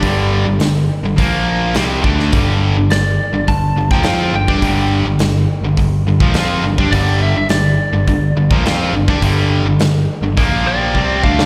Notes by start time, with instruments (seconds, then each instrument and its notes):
Already playing: lead electric guitar D5
0.02 picked electric bass G1, distorted electric guitar G2 D3 G3, kick, open hi-hat
0.47 picked electric bass G1, distorted electric guitar G2 D3
0.60 picked electric bass G1, distorted electric guitar G2 D3, snare, open hi-hat
1.03 picked electric bass G1, distorted electric guitar G2 D3
1.18 picked electric bass A#1, distorted electric guitar A#2 F3 A#3, kick, open hi-hat
1.75 picked electric bass C2, distorted electric guitar C3 G3 C4, snare, open hi-hat
2.02 picked electric bass D2, distorted electric guitar D3 A3 D4, kick
2.19 snare
2.32 picked electric bass G1, distorted electric guitar G2 D3 G3, kick, open hi-hat
2.76 picked electric bass G1, distorted electric guitar G2 D3
2.90 picked electric bass G1, distorted electric guitar G2 D3, lead electric guitar D5, snare, open hi-hat
3.33 picked electric bass G1, distorted electric guitar G2 D3
3.48 picked electric bass G1, distorted electric guitar G2 D3, lead electric guitar A5, kick, open hi-hat
3.75 picked electric bass G1, distorted electric guitar G2 D3
3.91 picked electric bass A#1, distorted electric guitar A#2 F3, lead electric guitar G5, kick, snare
4.03 picked electric bass F2, distorted electric guitar F3 C4 F4, snare, open hi-hat
4.31 picked electric bass G1, distorted electric guitar G2 D3
4.36 lead electric guitar G5
4.48 picked electric bass G2, distorted electric guitar G3 D4, kick
4.62 picked electric bass G1, distorted electric guitar G2 D3 G3, kick, open hi-hat
5.04 picked electric bass G1, distorted electric guitar G2 D3
5.18 picked electric bass G1, distorted electric guitar G2, snare, open hi-hat
5.23 distorted electric guitar D3
5.61 picked electric bass G1, distorted electric guitar G2 D3
5.77 picked electric bass G1, distorted electric guitar G2 D3, kick, open hi-hat
6.05 picked electric bass G1, distorted electric guitar G2 D3
6.20 picked electric bass A#1, distorted electric guitar A#2 F3, kick
6.34 picked electric bass F2, distorted electric guitar F3 C4 F4, snare, open hi-hat
6.64 picked electric bass G1, distorted electric guitar G2 D3
6.78 picked electric bass G2, distorted electric guitar G3 D4, kick
6.92 picked electric bass G1, distorted electric guitar G2 D3 G3, lead electric guitar D5, kick, open hi-hat
7.23 lead electric guitar E5
7.36 picked electric bass G1, distorted electric guitar G2 D3, lead electric guitar E5
7.49 picked electric bass G1, distorted electric guitar G2 D3, lead electric guitar D5, snare, open hi-hat
7.93 picked electric bass G1, distorted electric guitar G2 D3
8.07 picked electric bass G1, distorted electric guitar G2 D3, kick, open hi-hat
8.35 picked electric bass G1, distorted electric guitar G2 D3
8.51 picked electric bass A#1, distorted electric guitar A#2 F3, kick
8.64 picked electric bass F2, distorted electric guitar F3 C4 F4, snare, open hi-hat
8.91 picked electric bass G1, distorted electric guitar G2 D3
9.07 picked electric bass G2, distorted electric guitar G3 D4, kick
9.22 picked electric bass G1, distorted electric guitar G2 D3 G3, kick, open hi-hat
9.63 picked electric bass G1, distorted electric guitar G2 D3
9.79 picked electric bass G1, distorted electric guitar G2 D3, snare, open hi-hat
10.22 picked electric bass G1, distorted electric guitar G2 D3
10.37 picked electric bass A#1, distorted electric guitar A#2 F3 A#3, kick, open hi-hat
10.67 lead electric guitar G4 D5
10.94 picked electric bass C2, distorted electric guitar C3 G3 C4, kick
11.23 picked electric bass D2, distorted electric guitar D3 A3 D4, lead electric guitar D5 F5, kick
11.39 snare